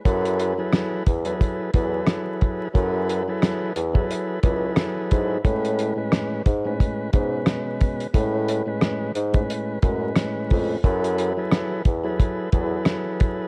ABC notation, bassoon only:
X:1
M:4/4
L:1/8
Q:"Swing 16ths" 1/4=89
K:F#m
V:1 name="Bassoon" clef=bass
F,,2 z E,, z E,, z2 | F,,2 z E,, z C,, z G,, | A,,2 z G,, z G,, z2 | A,,2 z G,, z F,, z =F,, |
F,,2 z E,, z E,, z2 |]